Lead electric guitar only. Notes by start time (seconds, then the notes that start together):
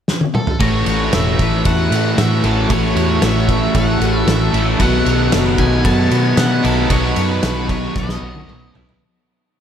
0.35 A4
0.60 C#5
0.87 C#5
1.14 E5
1.66 F#5
2.18 E5
2.45 A4
2.71 C#5
2.97 C#5
3.24 E5
3.77 F#5
4.29 E5
4.82 F#5
5.59 G#5
5.86 A5
6.25 G#5
6.38 F#5
6.64 A4
6.91 C#5
7.31 B4
7.70 C#5
7.97 D#5